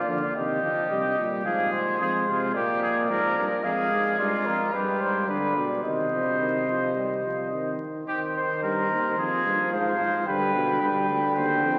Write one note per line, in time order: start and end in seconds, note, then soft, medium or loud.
0.00 0.35 F4 medium
0.00 0.32 D5 medium
0.08 0.20 D3 medium
0.08 0.21 F3 medium
0.36 0.63 C3 medium
0.36 0.62 D#3 medium
0.36 1.44 G4 medium
0.36 1.29 D#5 medium
0.63 0.92 D3 medium
0.63 0.90 F3 medium
0.91 1.18 C3 medium
0.91 1.03 G3 medium
1.18 1.45 A#2 medium
1.18 1.45 G3 medium
1.45 2.00 G#2 medium
1.45 1.99 F3 medium
1.45 1.99 G#4 medium
1.45 1.72 F5 medium
1.73 2.53 C5 medium
2.00 2.27 F2 medium
2.00 2.56 G#3 medium
2.00 2.13 G#4 medium
2.27 2.55 C3 medium
2.27 2.55 F4 medium
2.55 3.09 A#2 medium
2.55 3.11 A#3 medium
2.55 2.82 G4 medium
2.55 3.65 D5 medium
2.82 2.95 G#4 medium
3.10 3.37 G#2 medium
3.10 3.64 F3 medium
3.10 3.37 A#4 medium
3.37 3.50 G2 medium
3.37 3.64 A#4 medium
3.64 3.91 F2 medium
3.64 4.71 G#3 medium
3.64 4.18 G#4 medium
3.64 4.20 F5 medium
3.92 4.18 G#2 medium
4.18 4.31 G2 medium
4.18 4.72 F4 medium
4.18 4.47 D5 medium
4.46 4.59 F2 medium
4.46 4.75 A#4 medium
4.73 4.86 G2 medium
4.73 5.30 G3 medium
4.73 5.27 G4 medium
4.73 5.02 B4 medium
5.01 5.30 G#2 medium
5.01 5.27 C5 medium
5.28 5.55 G2 medium
5.28 5.64 D3 medium
5.28 5.64 B4 medium
5.28 5.55 D5 medium
5.56 5.83 B2 medium
5.56 5.83 D5 medium
5.84 7.76 C3 medium
5.84 6.10 D#3 medium
5.84 7.76 C5 medium
5.84 7.76 D#5 medium
6.12 6.39 F3 medium
6.40 6.67 D#3 medium
6.68 6.95 F3 medium
6.96 7.08 G3 medium
7.24 7.51 F3 soft
7.52 8.06 D#3 medium
8.07 9.14 D#3 medium
8.07 8.20 G4 medium
8.07 9.68 C5 medium
8.35 8.62 C5 medium
8.63 8.88 G2 medium
8.63 9.17 A#4 medium
8.90 9.17 D#2 medium
9.18 9.45 F2 medium
9.18 10.25 F3 medium
9.18 9.71 G#4 medium
9.45 9.58 G2 medium
9.72 9.99 G#2 medium
9.72 10.26 C5 medium
9.72 10.26 F5 medium
10.00 10.27 G#2 medium
10.27 10.54 G2 medium
10.27 10.80 D3 medium
10.27 10.80 B4 medium
10.27 11.34 G5 medium
10.55 10.81 B2 medium
10.81 11.08 G2 medium
10.81 11.79 D3 medium
10.81 11.35 B4 medium
11.09 11.21 D2 medium
11.36 11.65 D#2 medium
11.36 11.79 C5 medium
11.36 11.79 G5 medium
11.64 11.79 F2 medium